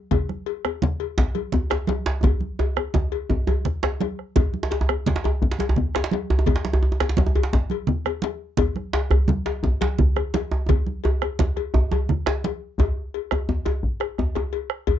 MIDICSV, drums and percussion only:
0, 0, Header, 1, 4, 480
1, 0, Start_track
1, 0, Tempo, 353149
1, 152, Time_signature, 12, 3, 24, 8
1, 10712, Tempo, 349854
1, 20465, End_track
2, 0, Start_track
2, 0, Title_t, "Bombo"
2, 157, Note_on_c, 9, 43, 87
2, 293, Note_off_c, 9, 43, 0
2, 398, Note_on_c, 9, 37, 25
2, 534, Note_off_c, 9, 37, 0
2, 879, Note_on_c, 9, 37, 73
2, 1015, Note_off_c, 9, 37, 0
2, 1598, Note_on_c, 9, 43, 98
2, 1734, Note_off_c, 9, 43, 0
2, 2322, Note_on_c, 9, 37, 79
2, 2458, Note_off_c, 9, 37, 0
2, 3041, Note_on_c, 9, 43, 105
2, 3177, Note_off_c, 9, 43, 0
2, 3529, Note_on_c, 9, 37, 32
2, 3665, Note_off_c, 9, 37, 0
2, 3763, Note_on_c, 9, 37, 79
2, 3899, Note_off_c, 9, 37, 0
2, 4486, Note_on_c, 9, 43, 99
2, 4622, Note_off_c, 9, 43, 0
2, 4738, Note_on_c, 9, 37, 28
2, 4874, Note_off_c, 9, 37, 0
2, 4976, Note_on_c, 9, 37, 29
2, 5112, Note_off_c, 9, 37, 0
2, 5216, Note_on_c, 9, 37, 71
2, 5352, Note_off_c, 9, 37, 0
2, 5695, Note_on_c, 9, 37, 29
2, 5831, Note_off_c, 9, 37, 0
2, 5930, Note_on_c, 9, 43, 103
2, 6066, Note_off_c, 9, 43, 0
2, 6647, Note_on_c, 9, 37, 80
2, 6783, Note_off_c, 9, 37, 0
2, 7364, Note_on_c, 9, 43, 102
2, 7500, Note_off_c, 9, 43, 0
2, 8085, Note_on_c, 9, 37, 69
2, 8220, Note_off_c, 9, 37, 0
2, 8795, Note_on_c, 9, 43, 91
2, 8931, Note_off_c, 9, 43, 0
2, 9038, Note_on_c, 9, 37, 26
2, 9174, Note_off_c, 9, 37, 0
2, 9519, Note_on_c, 9, 37, 76
2, 9655, Note_off_c, 9, 37, 0
2, 10235, Note_on_c, 9, 43, 101
2, 10370, Note_off_c, 9, 43, 0
2, 10955, Note_on_c, 9, 37, 74
2, 11092, Note_off_c, 9, 37, 0
2, 11680, Note_on_c, 9, 43, 95
2, 11817, Note_off_c, 9, 43, 0
2, 11925, Note_on_c, 9, 37, 29
2, 12062, Note_off_c, 9, 37, 0
2, 12401, Note_on_c, 9, 37, 74
2, 12538, Note_off_c, 9, 37, 0
2, 13110, Note_on_c, 9, 43, 95
2, 13247, Note_off_c, 9, 43, 0
2, 13846, Note_on_c, 9, 37, 66
2, 13984, Note_off_c, 9, 37, 0
2, 14565, Note_on_c, 9, 37, 25
2, 14565, Note_on_c, 9, 43, 85
2, 14702, Note_off_c, 9, 37, 0
2, 14702, Note_off_c, 9, 43, 0
2, 15053, Note_on_c, 9, 37, 27
2, 15190, Note_off_c, 9, 37, 0
2, 15291, Note_on_c, 9, 37, 68
2, 15428, Note_off_c, 9, 37, 0
2, 15531, Note_on_c, 9, 37, 28
2, 15668, Note_off_c, 9, 37, 0
2, 15765, Note_on_c, 9, 37, 25
2, 15903, Note_off_c, 9, 37, 0
2, 16003, Note_on_c, 9, 37, 27
2, 16003, Note_on_c, 9, 43, 92
2, 16140, Note_off_c, 9, 37, 0
2, 16140, Note_off_c, 9, 43, 0
2, 16488, Note_on_c, 9, 37, 26
2, 16625, Note_off_c, 9, 37, 0
2, 16724, Note_on_c, 9, 37, 67
2, 16861, Note_off_c, 9, 37, 0
2, 17435, Note_on_c, 9, 43, 91
2, 17572, Note_off_c, 9, 43, 0
2, 18161, Note_on_c, 9, 37, 76
2, 18298, Note_off_c, 9, 37, 0
2, 18875, Note_on_c, 9, 43, 88
2, 19013, Note_off_c, 9, 43, 0
2, 19119, Note_on_c, 9, 37, 68
2, 19256, Note_off_c, 9, 37, 0
2, 19358, Note_on_c, 9, 37, 28
2, 19496, Note_off_c, 9, 37, 0
2, 19593, Note_on_c, 9, 37, 28
2, 19730, Note_off_c, 9, 37, 0
2, 20064, Note_on_c, 9, 37, 64
2, 20202, Note_off_c, 9, 37, 0
2, 20304, Note_on_c, 9, 43, 82
2, 20441, Note_off_c, 9, 43, 0
2, 20465, End_track
3, 0, Start_track
3, 0, Title_t, "Djembe"
3, 152, Note_on_c, 9, 63, 82
3, 152, Note_on_c, 9, 64, 80
3, 287, Note_off_c, 9, 63, 0
3, 287, Note_off_c, 9, 64, 0
3, 402, Note_on_c, 9, 62, 26
3, 538, Note_off_c, 9, 62, 0
3, 887, Note_on_c, 9, 63, 60
3, 1023, Note_off_c, 9, 63, 0
3, 1132, Note_on_c, 9, 62, 75
3, 1132, Note_on_c, 9, 64, 75
3, 1268, Note_off_c, 9, 62, 0
3, 1268, Note_off_c, 9, 64, 0
3, 1600, Note_on_c, 9, 62, 98
3, 1615, Note_on_c, 9, 63, 75
3, 1736, Note_off_c, 9, 62, 0
3, 1751, Note_off_c, 9, 63, 0
3, 2087, Note_on_c, 9, 63, 78
3, 2095, Note_on_c, 9, 64, 81
3, 2223, Note_off_c, 9, 63, 0
3, 2231, Note_off_c, 9, 64, 0
3, 2327, Note_on_c, 9, 62, 76
3, 2338, Note_on_c, 9, 63, 56
3, 2463, Note_off_c, 9, 62, 0
3, 2474, Note_off_c, 9, 63, 0
3, 2563, Note_on_c, 9, 63, 70
3, 2568, Note_on_c, 9, 62, 75
3, 2699, Note_off_c, 9, 63, 0
3, 2704, Note_off_c, 9, 62, 0
3, 2801, Note_on_c, 9, 62, 103
3, 2937, Note_off_c, 9, 62, 0
3, 3044, Note_on_c, 9, 63, 90
3, 3044, Note_on_c, 9, 64, 73
3, 3179, Note_off_c, 9, 64, 0
3, 3180, Note_off_c, 9, 63, 0
3, 3523, Note_on_c, 9, 63, 99
3, 3659, Note_off_c, 9, 63, 0
3, 3768, Note_on_c, 9, 63, 56
3, 3904, Note_off_c, 9, 63, 0
3, 4000, Note_on_c, 9, 63, 97
3, 4005, Note_on_c, 9, 62, 71
3, 4005, Note_on_c, 9, 64, 66
3, 4136, Note_off_c, 9, 63, 0
3, 4141, Note_off_c, 9, 62, 0
3, 4141, Note_off_c, 9, 64, 0
3, 4479, Note_on_c, 9, 63, 89
3, 4494, Note_off_c, 9, 63, 0
3, 4494, Note_on_c, 9, 63, 69
3, 4630, Note_off_c, 9, 63, 0
3, 4719, Note_on_c, 9, 63, 89
3, 4855, Note_off_c, 9, 63, 0
3, 4971, Note_on_c, 9, 62, 24
3, 4971, Note_on_c, 9, 64, 71
3, 5107, Note_off_c, 9, 62, 0
3, 5107, Note_off_c, 9, 64, 0
3, 5204, Note_on_c, 9, 62, 95
3, 5210, Note_on_c, 9, 63, 50
3, 5340, Note_off_c, 9, 62, 0
3, 5346, Note_off_c, 9, 63, 0
3, 5454, Note_on_c, 9, 62, 66
3, 5590, Note_off_c, 9, 62, 0
3, 5931, Note_on_c, 9, 63, 94
3, 5934, Note_off_c, 9, 63, 0
3, 5934, Note_on_c, 9, 63, 76
3, 5934, Note_on_c, 9, 64, 78
3, 6070, Note_off_c, 9, 63, 0
3, 6070, Note_off_c, 9, 64, 0
3, 6294, Note_on_c, 9, 62, 87
3, 6410, Note_off_c, 9, 62, 0
3, 6410, Note_on_c, 9, 62, 76
3, 6538, Note_on_c, 9, 63, 93
3, 6546, Note_off_c, 9, 62, 0
3, 6653, Note_off_c, 9, 63, 0
3, 6653, Note_on_c, 9, 63, 61
3, 6789, Note_off_c, 9, 63, 0
3, 6891, Note_on_c, 9, 62, 73
3, 6891, Note_on_c, 9, 64, 74
3, 6898, Note_off_c, 9, 62, 0
3, 6898, Note_on_c, 9, 62, 81
3, 7010, Note_off_c, 9, 62, 0
3, 7010, Note_on_c, 9, 62, 82
3, 7027, Note_off_c, 9, 64, 0
3, 7139, Note_on_c, 9, 63, 103
3, 7146, Note_off_c, 9, 62, 0
3, 7275, Note_off_c, 9, 63, 0
3, 7372, Note_on_c, 9, 63, 79
3, 7496, Note_on_c, 9, 62, 80
3, 7508, Note_off_c, 9, 63, 0
3, 7612, Note_off_c, 9, 62, 0
3, 7612, Note_on_c, 9, 62, 75
3, 7737, Note_on_c, 9, 63, 105
3, 7748, Note_off_c, 9, 62, 0
3, 7852, Note_on_c, 9, 64, 85
3, 7873, Note_off_c, 9, 63, 0
3, 7988, Note_off_c, 9, 64, 0
3, 8092, Note_on_c, 9, 63, 58
3, 8096, Note_on_c, 9, 62, 86
3, 8209, Note_off_c, 9, 62, 0
3, 8209, Note_on_c, 9, 62, 82
3, 8228, Note_off_c, 9, 63, 0
3, 8336, Note_off_c, 9, 62, 0
3, 8336, Note_on_c, 9, 62, 74
3, 8472, Note_off_c, 9, 62, 0
3, 8566, Note_on_c, 9, 63, 109
3, 8683, Note_off_c, 9, 63, 0
3, 8683, Note_on_c, 9, 63, 82
3, 8800, Note_off_c, 9, 63, 0
3, 8800, Note_on_c, 9, 63, 79
3, 8802, Note_off_c, 9, 63, 0
3, 8802, Note_on_c, 9, 63, 76
3, 8802, Note_on_c, 9, 64, 80
3, 8911, Note_on_c, 9, 62, 82
3, 8938, Note_off_c, 9, 63, 0
3, 8938, Note_off_c, 9, 64, 0
3, 9034, Note_off_c, 9, 62, 0
3, 9034, Note_on_c, 9, 62, 71
3, 9153, Note_on_c, 9, 63, 108
3, 9169, Note_off_c, 9, 62, 0
3, 9278, Note_off_c, 9, 63, 0
3, 9278, Note_on_c, 9, 63, 80
3, 9404, Note_off_c, 9, 63, 0
3, 9404, Note_on_c, 9, 63, 76
3, 9521, Note_on_c, 9, 62, 75
3, 9527, Note_off_c, 9, 63, 0
3, 9527, Note_on_c, 9, 63, 60
3, 9642, Note_off_c, 9, 62, 0
3, 9642, Note_on_c, 9, 62, 80
3, 9663, Note_off_c, 9, 63, 0
3, 9756, Note_on_c, 9, 63, 103
3, 9761, Note_off_c, 9, 62, 0
3, 9761, Note_on_c, 9, 62, 77
3, 9761, Note_on_c, 9, 64, 78
3, 9874, Note_off_c, 9, 63, 0
3, 9874, Note_on_c, 9, 63, 82
3, 9897, Note_off_c, 9, 62, 0
3, 9897, Note_off_c, 9, 64, 0
3, 9996, Note_off_c, 9, 63, 0
3, 9996, Note_on_c, 9, 63, 77
3, 10105, Note_on_c, 9, 62, 81
3, 10132, Note_off_c, 9, 63, 0
3, 10238, Note_off_c, 9, 62, 0
3, 10238, Note_on_c, 9, 62, 77
3, 10243, Note_on_c, 9, 63, 76
3, 10374, Note_off_c, 9, 62, 0
3, 10378, Note_off_c, 9, 63, 0
3, 10719, Note_on_c, 9, 64, 80
3, 10856, Note_off_c, 9, 64, 0
3, 10965, Note_on_c, 9, 63, 54
3, 11102, Note_off_c, 9, 63, 0
3, 11199, Note_on_c, 9, 62, 78
3, 11337, Note_off_c, 9, 62, 0
3, 11679, Note_on_c, 9, 63, 77
3, 11679, Note_on_c, 9, 64, 77
3, 11816, Note_off_c, 9, 63, 0
3, 11816, Note_off_c, 9, 64, 0
3, 11931, Note_on_c, 9, 62, 24
3, 12068, Note_off_c, 9, 62, 0
3, 12156, Note_on_c, 9, 62, 112
3, 12293, Note_off_c, 9, 62, 0
3, 12393, Note_on_c, 9, 64, 82
3, 12411, Note_on_c, 9, 63, 58
3, 12530, Note_off_c, 9, 64, 0
3, 12548, Note_off_c, 9, 63, 0
3, 12644, Note_on_c, 9, 62, 73
3, 12644, Note_on_c, 9, 64, 69
3, 12781, Note_off_c, 9, 62, 0
3, 12781, Note_off_c, 9, 64, 0
3, 12877, Note_on_c, 9, 62, 77
3, 13014, Note_off_c, 9, 62, 0
3, 13120, Note_on_c, 9, 63, 84
3, 13127, Note_off_c, 9, 63, 0
3, 13127, Note_on_c, 9, 63, 72
3, 13264, Note_off_c, 9, 63, 0
3, 13367, Note_on_c, 9, 62, 98
3, 13504, Note_off_c, 9, 62, 0
3, 13601, Note_on_c, 9, 64, 74
3, 13606, Note_off_c, 9, 64, 0
3, 13606, Note_on_c, 9, 64, 82
3, 13744, Note_off_c, 9, 64, 0
3, 13842, Note_on_c, 9, 63, 54
3, 13979, Note_off_c, 9, 63, 0
3, 14084, Note_on_c, 9, 62, 71
3, 14085, Note_off_c, 9, 62, 0
3, 14085, Note_on_c, 9, 62, 72
3, 14223, Note_off_c, 9, 62, 0
3, 14325, Note_on_c, 9, 63, 87
3, 14462, Note_off_c, 9, 63, 0
3, 14569, Note_on_c, 9, 63, 101
3, 14575, Note_off_c, 9, 63, 0
3, 14575, Note_on_c, 9, 63, 73
3, 14575, Note_on_c, 9, 64, 71
3, 14712, Note_off_c, 9, 63, 0
3, 14712, Note_off_c, 9, 64, 0
3, 15060, Note_on_c, 9, 63, 107
3, 15197, Note_off_c, 9, 63, 0
3, 15298, Note_on_c, 9, 62, 23
3, 15298, Note_on_c, 9, 63, 54
3, 15435, Note_off_c, 9, 62, 0
3, 15435, Note_off_c, 9, 63, 0
3, 15538, Note_on_c, 9, 63, 99
3, 15540, Note_on_c, 9, 62, 70
3, 15540, Note_on_c, 9, 64, 67
3, 15675, Note_off_c, 9, 63, 0
3, 15678, Note_off_c, 9, 62, 0
3, 15678, Note_off_c, 9, 64, 0
3, 16009, Note_on_c, 9, 63, 99
3, 16011, Note_off_c, 9, 63, 0
3, 16011, Note_on_c, 9, 63, 67
3, 16148, Note_off_c, 9, 63, 0
3, 16246, Note_on_c, 9, 63, 96
3, 16256, Note_on_c, 9, 62, 22
3, 16383, Note_off_c, 9, 63, 0
3, 16393, Note_off_c, 9, 62, 0
3, 16499, Note_on_c, 9, 62, 23
3, 16499, Note_on_c, 9, 64, 75
3, 16637, Note_off_c, 9, 62, 0
3, 16637, Note_off_c, 9, 64, 0
3, 16731, Note_on_c, 9, 62, 104
3, 16735, Note_off_c, 9, 62, 0
3, 16735, Note_on_c, 9, 62, 21
3, 16735, Note_on_c, 9, 63, 55
3, 16872, Note_off_c, 9, 62, 0
3, 16872, Note_off_c, 9, 63, 0
3, 16972, Note_on_c, 9, 62, 70
3, 17109, Note_off_c, 9, 62, 0
3, 17443, Note_on_c, 9, 62, 23
3, 17443, Note_on_c, 9, 64, 75
3, 17456, Note_on_c, 9, 63, 95
3, 17580, Note_off_c, 9, 62, 0
3, 17580, Note_off_c, 9, 64, 0
3, 17593, Note_off_c, 9, 63, 0
3, 17933, Note_on_c, 9, 62, 22
3, 18070, Note_off_c, 9, 62, 0
3, 18170, Note_on_c, 9, 63, 75
3, 18178, Note_off_c, 9, 63, 0
3, 18178, Note_on_c, 9, 62, 60
3, 18178, Note_on_c, 9, 63, 55
3, 18315, Note_off_c, 9, 62, 0
3, 18315, Note_off_c, 9, 63, 0
3, 18405, Note_on_c, 9, 63, 74
3, 18405, Note_on_c, 9, 64, 70
3, 18542, Note_off_c, 9, 63, 0
3, 18542, Note_off_c, 9, 64, 0
3, 18641, Note_on_c, 9, 63, 90
3, 18778, Note_off_c, 9, 63, 0
3, 19363, Note_on_c, 9, 64, 73
3, 19368, Note_on_c, 9, 63, 80
3, 19500, Note_off_c, 9, 64, 0
3, 19505, Note_off_c, 9, 63, 0
3, 19602, Note_on_c, 9, 62, 53
3, 19602, Note_on_c, 9, 63, 55
3, 19605, Note_off_c, 9, 63, 0
3, 19605, Note_on_c, 9, 63, 76
3, 19739, Note_off_c, 9, 62, 0
3, 19742, Note_off_c, 9, 63, 0
3, 20310, Note_on_c, 9, 62, 22
3, 20310, Note_on_c, 9, 64, 81
3, 20447, Note_off_c, 9, 62, 0
3, 20447, Note_off_c, 9, 64, 0
3, 20465, End_track
4, 0, Start_track
4, 0, Title_t, "Drums"
4, 150, Note_on_c, 9, 56, 65
4, 158, Note_on_c, 9, 64, 72
4, 286, Note_off_c, 9, 56, 0
4, 294, Note_off_c, 9, 64, 0
4, 397, Note_on_c, 9, 63, 56
4, 533, Note_off_c, 9, 63, 0
4, 630, Note_on_c, 9, 56, 52
4, 766, Note_off_c, 9, 56, 0
4, 879, Note_on_c, 9, 56, 49
4, 1015, Note_off_c, 9, 56, 0
4, 1116, Note_on_c, 9, 63, 71
4, 1116, Note_on_c, 9, 64, 72
4, 1252, Note_off_c, 9, 63, 0
4, 1252, Note_off_c, 9, 64, 0
4, 1358, Note_on_c, 9, 56, 53
4, 1494, Note_off_c, 9, 56, 0
4, 1832, Note_on_c, 9, 56, 52
4, 1837, Note_on_c, 9, 63, 56
4, 1968, Note_off_c, 9, 56, 0
4, 1973, Note_off_c, 9, 63, 0
4, 2070, Note_on_c, 9, 63, 22
4, 2070, Note_on_c, 9, 64, 72
4, 2206, Note_off_c, 9, 63, 0
4, 2206, Note_off_c, 9, 64, 0
4, 2309, Note_on_c, 9, 63, 21
4, 2314, Note_on_c, 9, 56, 47
4, 2445, Note_off_c, 9, 63, 0
4, 2450, Note_off_c, 9, 56, 0
4, 2547, Note_on_c, 9, 63, 71
4, 2551, Note_on_c, 9, 56, 44
4, 2683, Note_off_c, 9, 63, 0
4, 2687, Note_off_c, 9, 56, 0
4, 3030, Note_on_c, 9, 64, 76
4, 3042, Note_on_c, 9, 56, 61
4, 3165, Note_off_c, 9, 64, 0
4, 3178, Note_off_c, 9, 56, 0
4, 3269, Note_on_c, 9, 63, 55
4, 3405, Note_off_c, 9, 63, 0
4, 3523, Note_on_c, 9, 56, 45
4, 3659, Note_off_c, 9, 56, 0
4, 3753, Note_on_c, 9, 63, 21
4, 3759, Note_on_c, 9, 56, 46
4, 3889, Note_off_c, 9, 63, 0
4, 3895, Note_off_c, 9, 56, 0
4, 3995, Note_on_c, 9, 63, 72
4, 3995, Note_on_c, 9, 64, 72
4, 4131, Note_off_c, 9, 63, 0
4, 4131, Note_off_c, 9, 64, 0
4, 4240, Note_on_c, 9, 56, 51
4, 4376, Note_off_c, 9, 56, 0
4, 4723, Note_on_c, 9, 63, 58
4, 4728, Note_on_c, 9, 56, 51
4, 4859, Note_off_c, 9, 63, 0
4, 4864, Note_off_c, 9, 56, 0
4, 4962, Note_on_c, 9, 64, 73
4, 5098, Note_off_c, 9, 64, 0
4, 5207, Note_on_c, 9, 56, 46
4, 5342, Note_off_c, 9, 56, 0
4, 5444, Note_on_c, 9, 63, 72
4, 5447, Note_on_c, 9, 56, 49
4, 5580, Note_off_c, 9, 63, 0
4, 5583, Note_off_c, 9, 56, 0
4, 5923, Note_on_c, 9, 64, 78
4, 5928, Note_on_c, 9, 56, 63
4, 6059, Note_off_c, 9, 64, 0
4, 6064, Note_off_c, 9, 56, 0
4, 6166, Note_on_c, 9, 63, 55
4, 6302, Note_off_c, 9, 63, 0
4, 6401, Note_on_c, 9, 56, 48
4, 6537, Note_off_c, 9, 56, 0
4, 6647, Note_on_c, 9, 56, 47
4, 6783, Note_off_c, 9, 56, 0
4, 6883, Note_on_c, 9, 63, 69
4, 6883, Note_on_c, 9, 64, 74
4, 7019, Note_off_c, 9, 63, 0
4, 7019, Note_off_c, 9, 64, 0
4, 7126, Note_on_c, 9, 56, 52
4, 7262, Note_off_c, 9, 56, 0
4, 7594, Note_on_c, 9, 63, 55
4, 7607, Note_on_c, 9, 56, 51
4, 7730, Note_off_c, 9, 63, 0
4, 7743, Note_off_c, 9, 56, 0
4, 7833, Note_on_c, 9, 63, 22
4, 7833, Note_on_c, 9, 64, 75
4, 7969, Note_off_c, 9, 63, 0
4, 7969, Note_off_c, 9, 64, 0
4, 8072, Note_on_c, 9, 63, 22
4, 8091, Note_on_c, 9, 56, 49
4, 8208, Note_off_c, 9, 63, 0
4, 8227, Note_off_c, 9, 56, 0
4, 8311, Note_on_c, 9, 63, 70
4, 8327, Note_on_c, 9, 56, 50
4, 8447, Note_off_c, 9, 63, 0
4, 8463, Note_off_c, 9, 56, 0
4, 8784, Note_on_c, 9, 64, 77
4, 8792, Note_on_c, 9, 56, 69
4, 8920, Note_off_c, 9, 64, 0
4, 8928, Note_off_c, 9, 56, 0
4, 9036, Note_on_c, 9, 63, 56
4, 9171, Note_off_c, 9, 63, 0
4, 9521, Note_on_c, 9, 56, 46
4, 9657, Note_off_c, 9, 56, 0
4, 9744, Note_on_c, 9, 63, 76
4, 9744, Note_on_c, 9, 64, 78
4, 9879, Note_off_c, 9, 63, 0
4, 9879, Note_off_c, 9, 64, 0
4, 10001, Note_on_c, 9, 56, 54
4, 10137, Note_off_c, 9, 56, 0
4, 10463, Note_on_c, 9, 63, 60
4, 10480, Note_on_c, 9, 56, 52
4, 10599, Note_off_c, 9, 63, 0
4, 10616, Note_off_c, 9, 56, 0
4, 10698, Note_on_c, 9, 63, 23
4, 10698, Note_on_c, 9, 64, 82
4, 10835, Note_off_c, 9, 63, 0
4, 10835, Note_off_c, 9, 64, 0
4, 10944, Note_on_c, 9, 63, 25
4, 10960, Note_on_c, 9, 56, 52
4, 11081, Note_off_c, 9, 63, 0
4, 11097, Note_off_c, 9, 56, 0
4, 11176, Note_on_c, 9, 63, 74
4, 11195, Note_on_c, 9, 56, 51
4, 11313, Note_off_c, 9, 63, 0
4, 11333, Note_off_c, 9, 56, 0
4, 11660, Note_on_c, 9, 64, 85
4, 11675, Note_on_c, 9, 56, 71
4, 11798, Note_off_c, 9, 64, 0
4, 11813, Note_off_c, 9, 56, 0
4, 11913, Note_on_c, 9, 63, 60
4, 12050, Note_off_c, 9, 63, 0
4, 12161, Note_on_c, 9, 56, 53
4, 12298, Note_off_c, 9, 56, 0
4, 12400, Note_on_c, 9, 56, 49
4, 12537, Note_off_c, 9, 56, 0
4, 12629, Note_on_c, 9, 63, 81
4, 12629, Note_on_c, 9, 64, 83
4, 12766, Note_off_c, 9, 63, 0
4, 12766, Note_off_c, 9, 64, 0
4, 12875, Note_on_c, 9, 56, 56
4, 13013, Note_off_c, 9, 56, 0
4, 13357, Note_on_c, 9, 56, 56
4, 13363, Note_on_c, 9, 63, 64
4, 13494, Note_off_c, 9, 56, 0
4, 13500, Note_off_c, 9, 63, 0
4, 13598, Note_on_c, 9, 63, 24
4, 13598, Note_on_c, 9, 64, 87
4, 13735, Note_off_c, 9, 63, 0
4, 13735, Note_off_c, 9, 64, 0
4, 13842, Note_on_c, 9, 56, 55
4, 13848, Note_on_c, 9, 63, 25
4, 13980, Note_off_c, 9, 56, 0
4, 13985, Note_off_c, 9, 63, 0
4, 14087, Note_on_c, 9, 63, 82
4, 14088, Note_on_c, 9, 56, 55
4, 14225, Note_off_c, 9, 63, 0
4, 14226, Note_off_c, 9, 56, 0
4, 14565, Note_on_c, 9, 56, 73
4, 14565, Note_on_c, 9, 64, 90
4, 14702, Note_off_c, 9, 56, 0
4, 14702, Note_off_c, 9, 64, 0
4, 14806, Note_on_c, 9, 63, 60
4, 14943, Note_off_c, 9, 63, 0
4, 15041, Note_on_c, 9, 56, 49
4, 15052, Note_on_c, 9, 63, 26
4, 15178, Note_off_c, 9, 56, 0
4, 15190, Note_off_c, 9, 63, 0
4, 15290, Note_on_c, 9, 56, 53
4, 15427, Note_off_c, 9, 56, 0
4, 15527, Note_on_c, 9, 63, 81
4, 15527, Note_on_c, 9, 64, 82
4, 15664, Note_off_c, 9, 63, 0
4, 15664, Note_off_c, 9, 64, 0
4, 15771, Note_on_c, 9, 56, 53
4, 15771, Note_on_c, 9, 63, 26
4, 15908, Note_off_c, 9, 56, 0
4, 15909, Note_off_c, 9, 63, 0
4, 16016, Note_on_c, 9, 63, 25
4, 16153, Note_off_c, 9, 63, 0
4, 16246, Note_on_c, 9, 63, 66
4, 16259, Note_on_c, 9, 56, 52
4, 16383, Note_off_c, 9, 63, 0
4, 16396, Note_off_c, 9, 56, 0
4, 16488, Note_on_c, 9, 63, 26
4, 16488, Note_on_c, 9, 64, 84
4, 16625, Note_off_c, 9, 63, 0
4, 16625, Note_off_c, 9, 64, 0
4, 16744, Note_on_c, 9, 56, 52
4, 16881, Note_off_c, 9, 56, 0
4, 16972, Note_on_c, 9, 63, 81
4, 16983, Note_on_c, 9, 56, 50
4, 17109, Note_off_c, 9, 63, 0
4, 17120, Note_off_c, 9, 56, 0
4, 17455, Note_on_c, 9, 56, 58
4, 17592, Note_off_c, 9, 56, 0
4, 17932, Note_on_c, 9, 56, 45
4, 18069, Note_off_c, 9, 56, 0
4, 18170, Note_on_c, 9, 56, 46
4, 18307, Note_off_c, 9, 56, 0
4, 18634, Note_on_c, 9, 56, 51
4, 18771, Note_off_c, 9, 56, 0
4, 19109, Note_on_c, 9, 56, 46
4, 19247, Note_off_c, 9, 56, 0
4, 19593, Note_on_c, 9, 56, 49
4, 19730, Note_off_c, 9, 56, 0
4, 19830, Note_on_c, 9, 56, 51
4, 19967, Note_off_c, 9, 56, 0
4, 20302, Note_on_c, 9, 56, 68
4, 20440, Note_off_c, 9, 56, 0
4, 20465, End_track
0, 0, End_of_file